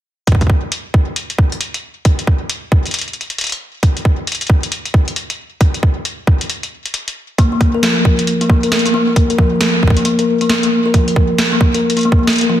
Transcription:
0.27 kick loud
0.27 closed hi-hat medium
0.32 kick medium
0.35 kick medium
0.41 kick medium
0.41 kick soft
0.41 closed hi-hat soft
0.47 kick soft
0.50 kick medium
0.72 closed hi-hat medium
0.94 kick loud
1.16 closed hi-hat medium
1.30 closed hi-hat soft
1.38 kick loud
1.52 closed hi-hat soft
1.61 closed hi-hat medium
1.74 closed hi-hat soft
2.05 kick loud
2.05 closed hi-hat medium
2.19 closed hi-hat soft
2.27 kick medium
2.50 closed hi-hat medium
2.72 kick loud
2.86 closed hi-hat soft
2.91 closed hi-hat soft
2.94 closed hi-hat medium
2.99 closed hi-hat soft
3.01 closed hi-hat soft
3.08 closed hi-hat soft
3.13 closed hi-hat soft
3.21 closed hi-hat soft
3.30 closed hi-hat soft
3.38 closed hi-hat medium
3.41 closed hi-hat medium
3.44 closed hi-hat soft
3.47 closed hi-hat soft
3.49 closed hi-hat soft
3.52 closed hi-hat soft
3.83 kick loud
3.83 closed hi-hat medium
3.97 closed hi-hat soft
4.05 kick loud
4.27 closed hi-hat medium
4.32 closed hi-hat medium
4.35 closed hi-hat soft
4.41 closed hi-hat soft
4.47 kick loud
4.47 closed hi-hat soft
4.63 closed hi-hat soft
4.72 closed hi-hat medium
4.86 closed hi-hat soft
4.94 kick loud
5.08 closed hi-hat soft
5.16 closed hi-hat medium
5.30 closed hi-hat soft
5.61 kick loud
5.61 closed hi-hat medium
5.74 closed hi-hat soft
5.83 kick medium
6.05 closed hi-hat medium
6.27 kick loud
6.41 closed hi-hat soft
6.50 closed hi-hat medium
6.63 closed hi-hat soft
6.86 closed hi-hat soft
6.94 closed hi-hat medium
7.08 closed hi-hat soft
7.38 7.49 A#3 medium
7.38 kick loud
7.38 closed hi-hat medium
7.52 7.59 A#3 medium
7.61 kick medium
7.61 closed hi-hat soft
7.74 7.81 A#4 medium
7.83 7.93 F3 medium
7.83 snare loud
7.83 closed hi-hat medium
8.05 kick loud
8.19 closed hi-hat soft
8.27 closed hi-hat medium
8.41 8.47 A#3 medium
8.41 closed hi-hat soft
8.50 8.60 A#3 medium
8.50 kick loud
8.63 8.71 A#4 medium
8.63 closed hi-hat soft
8.72 snare loud
8.72 closed hi-hat medium
8.79 closed hi-hat soft
8.85 8.89 A#3 medium
8.85 closed hi-hat soft
8.94 9.04 A#3 medium
9.08 9.14 A#3 medium
9.16 kick loud
9.16 closed hi-hat medium
9.30 9.36 A#4 medium
9.30 closed hi-hat soft
9.38 9.49 F3 medium
9.38 kick loud
9.61 snare loud
9.61 closed hi-hat medium
9.83 kick soft
9.88 kick medium
9.90 kick medium
9.97 10.03 A#3 medium
9.97 closed hi-hat soft
10.05 10.15 A#3 medium
10.05 closed hi-hat medium
10.19 10.27 A#4 medium
10.19 closed hi-hat soft
10.41 10.45 A#3 medium
10.41 closed hi-hat soft
10.49 10.60 A#3 medium
10.49 snare loud
10.49 closed hi-hat medium
10.63 10.70 A#3 medium
10.63 closed hi-hat soft
10.86 10.92 A#4 medium
10.94 11.04 F3 medium
10.94 kick loud
10.94 closed hi-hat medium
11.08 closed hi-hat soft
11.16 kick medium
11.38 snare loud
11.38 closed hi-hat medium
11.52 11.59 A#3 medium
11.61 11.71 A#3 medium
11.61 kick loud
11.74 11.82 A#4 medium
11.74 closed hi-hat soft
11.90 closed hi-hat medium
11.97 12.00 A#3 medium
11.97 closed hi-hat soft
11.99 closed hi-hat soft
12.01 closed hi-hat soft
12.03 12.15 A#3 medium
12.03 closed hi-hat soft
12.12 kick medium
12.19 12.25 A#3 medium
12.27 snare loud
12.27 closed hi-hat soft
12.30 closed hi-hat soft
12.33 closed hi-hat soft
12.36 closed hi-hat medium
12.38 12.47 A#4 medium
12.38 closed hi-hat medium
12.41 closed hi-hat soft
12.50 12.60 F3 medium

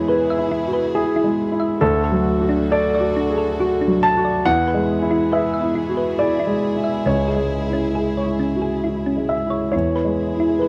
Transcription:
0.00 1.77 E2 medium
0.00 1.24 G#3 soft
0.00 1.78 B3 medium
0.00 0.26 E4 soft
0.00 1.78 E4 medium
0.00 1.78 G#4 medium
0.00 1.84 C#5 medium
0.08 0.55 G#4 soft
0.08 0.21 B4 medium
0.08 0.92 B4 medium
0.30 0.43 E5 medium
0.38 0.84 E4 soft
0.52 0.65 E4 medium
0.68 0.96 F#4 soft
0.73 0.86 B4 medium
0.95 1.41 E4 soft
0.95 1.77 G#4 medium
0.95 1.08 G#4 medium
1.16 1.29 E4 medium
1.24 1.70 G#3 soft
1.52 1.81 E4 medium
1.60 1.73 E5 medium
1.81 4.41 D2 medium
1.81 1.94 D4 medium
1.81 4.46 D4 medium
1.81 4.46 F#4 medium
1.81 2.67 A4 medium
1.81 4.46 A4 medium
2.04 2.17 A4 medium
2.12 2.60 F#3 medium
2.42 2.89 F#4 soft
2.49 2.63 D4 medium
2.71 3.18 A4 medium
2.71 2.85 A4 medium
2.71 3.55 D5 medium
2.95 3.07 D5 medium
3.00 3.47 F#4 medium
3.16 3.29 D4 medium
3.30 3.59 G#4 soft
3.38 3.51 A4 medium
3.60 4.05 F#4 medium
3.60 3.73 F#4 medium
3.81 3.94 D4 medium
3.87 4.33 F#3 medium
4.03 4.43 A5 medium
4.17 4.45 F#4 medium
4.25 4.37 D5 medium
4.45 7.02 E2 medium
4.45 7.06 B3 medium
4.45 4.58 E4 medium
4.45 9.72 E4 medium
4.45 9.72 G#4 medium
4.45 5.27 F#5 medium
4.68 4.80 B4 medium
4.74 5.20 G#3 medium
5.02 5.48 E4 soft
5.11 5.23 E4 medium
5.32 5.78 G#4 medium
5.32 5.45 B4 medium
5.32 6.15 E5 medium
5.54 5.66 E5 medium
5.61 6.06 E4 soft
5.75 5.88 E4 medium
5.89 6.18 F#4 soft
5.97 6.10 B4 medium
6.19 6.65 E4 soft
6.19 6.31 G#4 medium
6.19 7.02 D5 medium
6.40 6.53 E4 medium
6.47 6.94 G#3 soft
6.76 7.06 E4 soft
6.84 6.97 E5 medium
7.06 9.69 C#2 soft
7.06 10.68 G#3 soft
7.06 7.19 C#4 medium
7.06 9.26 C#5 medium
7.28 7.42 G#4 medium
7.36 7.84 G#3 soft
7.67 8.14 E4 soft
7.73 7.86 C#4 medium
7.95 8.09 G#4 medium
7.95 8.44 G#4 soft
8.17 8.31 C#5 medium
8.26 8.73 E4 soft
8.40 8.53 C#4 medium
8.56 8.85 F#4 soft
8.62 8.75 G#4 medium
8.84 8.97 E4 medium
8.84 9.33 E4 soft
9.06 9.20 C#4 medium
9.16 9.63 G#3 soft
9.29 9.70 E5 medium
9.46 9.75 E4 soft
9.46 9.64 C#5 medium
9.72 10.68 E2 soft
9.72 9.86 E4 medium
9.72 10.68 E4 soft
9.72 10.68 G#4 soft
9.72 10.56 C#5 medium
9.96 10.09 B4 medium
10.05 10.50 G#3 soft
10.34 10.68 E4 soft
10.40 10.53 E4 medium
10.59 10.68 G#4 soft
10.59 10.68 B4 soft
10.59 10.68 B4 medium

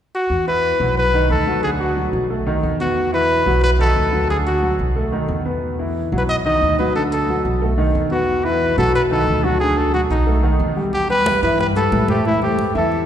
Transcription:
0.15 0.45 F#4 medium
0.30 0.76 E2 medium
0.47 0.74 E3 medium
0.47 0.74 E4 medium
0.47 0.94 B4 medium
0.80 1.27 B1 medium
0.80 1.08 F#3 medium
0.80 1.08 F#4 medium
0.98 1.28 B4 medium
1.14 1.41 D#3 medium
1.14 1.41 D#4 medium
1.30 2.07 D2 medium
1.30 1.61 A4 medium
1.47 1.61 F#3 medium
1.47 1.61 F#4 medium
1.63 1.91 D3 medium
1.63 1.91 D4 medium
1.63 1.71 G#4 medium
1.80 2.11 F#4 medium
1.97 2.24 F#3 medium
1.97 2.24 F#4 soft
2.13 2.60 B1 medium
2.30 2.44 A3 medium
2.30 2.44 A4 medium
2.46 2.74 D#3 medium
2.46 2.74 D#4 medium
2.63 3.41 E2 medium
2.80 3.07 B3 medium
2.80 3.11 F#4 medium
2.80 3.07 B4 medium
3.12 3.40 E3 medium
3.12 3.40 E4 medium
3.12 3.60 B4 loud
3.46 3.93 B1 medium
3.46 3.73 F#3 medium
3.46 3.74 F#4 medium
3.64 3.71 B4 medium
3.79 4.06 D#3 medium
3.79 4.06 D#4 medium
3.79 4.27 A4 medium
3.96 4.73 D2 medium
4.12 4.26 F#3 medium
4.12 4.26 F#4 medium
4.29 4.56 D3 medium
4.29 4.57 D4 medium
4.29 4.38 G#4 medium
4.47 4.77 F#4 medium
4.62 4.90 F#3 soft
4.62 4.90 F#4 soft
4.79 5.25 B1 medium
4.96 5.09 A3 medium
4.96 5.10 A4 medium
5.12 5.39 D#3 medium
5.12 5.40 D#4 medium
5.28 6.06 E2 medium
5.45 5.73 B3 medium
5.45 5.73 B4 medium
5.79 6.06 E3 medium
5.79 6.06 E4 medium
6.12 6.58 B1 medium
6.12 6.39 F#3 medium
6.12 6.40 F#4 medium
6.18 6.23 B4 medium
6.29 6.36 D#5 loud
6.45 6.73 D#3 medium
6.45 6.73 D#4 medium
6.45 6.76 D#5 medium
6.62 7.39 D2 medium
6.79 6.92 F#3 medium
6.79 6.93 F#4 medium
6.79 6.94 B4 medium
6.95 7.23 D3 medium
6.95 7.23 D4 medium
6.95 7.03 A4 medium
7.12 7.43 A4 medium
7.29 7.56 F#3 soft
7.29 7.56 F#4 soft
7.45 7.91 B1 medium
7.61 7.75 A3 medium
7.61 7.75 A4 medium
7.78 8.05 D#3 medium
7.78 8.05 D#4 medium
7.95 8.72 E2 medium
8.11 8.38 B3 medium
8.11 8.46 F#4 medium
8.11 8.38 B4 medium
8.44 8.72 E3 medium
8.44 8.72 E4 medium
8.44 8.78 B4 medium
8.77 9.24 B1 medium
8.77 9.05 F#3 medium
8.77 9.05 F#4 medium
8.77 8.93 A4 medium
8.95 9.02 B4 medium
9.11 9.38 D#3 medium
9.11 9.38 D#4 medium
9.11 9.45 A4 medium
9.27 10.04 D2 medium
9.44 9.57 F#3 medium
9.44 9.60 F#4 medium
9.44 9.58 F#4 medium
9.60 9.88 D3 medium
9.60 9.88 D4 medium
9.60 9.79 G#4 medium
9.78 9.94 A4 medium
9.94 10.21 F#3 medium
9.94 10.21 F#4 soft
9.94 10.02 F#4 medium
10.10 10.56 B1 medium
10.10 10.57 D#4 medium
10.26 10.40 A3 medium
10.26 10.40 A4 medium
10.43 10.70 D#3 medium
10.43 10.70 D#4 medium
10.59 11.37 E2 medium
10.76 10.90 G3 medium
10.76 10.90 G4 medium
10.93 11.09 G4 medium
10.93 high conga soft
11.09 11.36 G3 medium
11.09 11.37 G4 medium
11.09 11.37 B4 medium
11.09 11.41 B4 loud
11.09 high conga soft
11.26 high conga medium
11.42 11.89 G2 medium
11.42 11.56 E3 medium
11.42 11.56 E4 medium
11.42 11.58 B4 medium
11.42 11.56 E5 medium
11.42 high conga soft
11.59 11.73 G3 medium
11.59 11.73 G4 medium
11.59 11.73 B4 medium
11.59 11.68 B4 medium
11.59 high conga soft
11.76 12.03 G3 medium
11.76 12.03 G4 medium
11.76 12.07 A4 medium
11.76 12.03 B4 medium
11.76 high conga soft
11.92 12.69 A2 medium
11.92 high conga medium
12.08 12.22 A3 medium
12.08 12.25 G4 medium
12.08 12.22 A4 medium
12.08 12.23 C5 medium
12.08 high conga medium
12.25 12.39 E3 medium
12.25 12.39 E4 medium
12.25 12.42 E4 medium
12.25 12.39 E5 medium
12.25 high conga soft
12.42 12.69 A3 medium
12.42 12.73 G4 medium
12.42 12.69 A4 medium
12.42 12.69 C5 medium
12.42 high conga soft
12.58 high conga medium
12.75 13.06 E2 medium
12.75 13.02 E3 medium
12.75 13.02 E4 medium
12.75 13.06 A4 medium
12.75 13.02 E5 medium
12.75 high conga soft
12.92 high conga soft

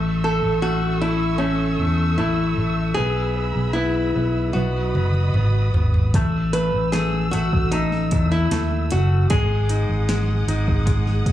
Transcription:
0.00 0.40 A1 medium
0.00 0.22 A3 medium
0.00 2.94 A4 medium
0.00 4.51 E5 soft
0.00 2.94 C#6 medium
0.00 4.51 E6 medium
0.24 0.61 A3 soft
0.24 0.62 A4 medium
0.44 1.76 A1 medium
0.62 1.01 A3 soft
0.62 1.01 F#4 medium
1.01 1.38 A3 soft
1.01 1.38 E4 medium
1.38 2.18 A3 soft
1.38 2.17 C#4 medium
1.80 2.16 E2 medium
2.18 2.56 A1 medium
2.18 2.95 A3 soft
2.18 2.99 E4 medium
2.58 2.94 A1 medium
2.94 3.52 B1 medium
2.94 3.35 B3 medium
2.94 3.71 G#4 medium
2.94 4.54 G#4 medium
2.94 4.54 B5 medium
3.36 3.74 B3 soft
3.56 4.11 B1 medium
3.73 4.14 B3 medium
3.73 4.50 E4 medium
4.16 4.53 B1 medium
4.16 4.54 B3 soft
4.53 4.92 B1 medium
4.53 4.94 B3 medium
4.53 5.70 F#4 medium
4.53 6.12 F#4 medium
4.53 6.13 D#5 soft
4.53 6.13 B5 medium
4.53 6.13 D#6 medium
4.53 high tom soft
4.95 5.32 F#1 medium
4.95 5.34 B3 soft
4.95 mid tom medium
5.14 mid tom medium
5.34 5.71 G#1 medium
5.34 5.73 B3 soft
5.34 mid tom medium
5.74 6.12 G#1 medium
5.74 6.13 B3 soft
5.74 floor tom medium
5.94 floor tom medium
6.14 6.70 A1 medium
6.14 9.27 A3 soft
6.14 6.53 A3 medium
6.14 9.27 E6 medium
6.14 kick medium
6.14 closed hi-hat medium
6.53 6.93 A3 soft
6.53 6.92 B4 medium
6.53 closed hi-hat medium
6.74 7.30 A1 medium
6.92 7.32 A3 soft
6.92 7.31 G#4 medium
6.92 snare medium
6.92 closed hi-hat medium
7.31 8.12 A1 medium
7.31 7.71 A3 soft
7.31 7.73 F#4 medium
7.31 closed hi-hat medium
7.53 kick medium
7.71 8.50 A3 soft
7.71 8.31 D#4 medium
7.71 closed hi-hat medium
7.92 snare soft
8.11 8.49 E2 medium
8.11 kick medium
8.11 closed hi-hat medium
8.32 8.93 E4 medium
8.51 8.89 D#2 medium
8.51 9.28 A3 soft
8.51 snare medium
8.51 closed hi-hat medium
8.91 9.28 F#1 medium
8.91 9.30 F#4 medium
8.91 closed hi-hat medium
9.30 9.86 G#1 medium
9.30 10.07 G#3 medium
9.30 10.44 G#4 medium
9.30 11.32 G#4 medium
9.30 11.32 F#5 medium
9.30 11.32 D#6 medium
9.30 kick loud
9.30 closed hi-hat medium
9.69 10.47 D#4 soft
9.69 closed hi-hat medium
9.89 10.44 G#1 medium
10.09 10.84 G#3 medium
10.09 snare medium
10.09 closed hi-hat medium
10.47 11.21 G#1 medium
10.47 11.32 D#4 soft
10.47 closed hi-hat medium
10.68 kick medium
10.86 11.32 G#3 soft
10.86 kick medium
10.86 closed hi-hat medium
11.07 snare soft
11.26 11.32 D#2 medium
11.26 kick medium
11.26 closed hi-hat medium

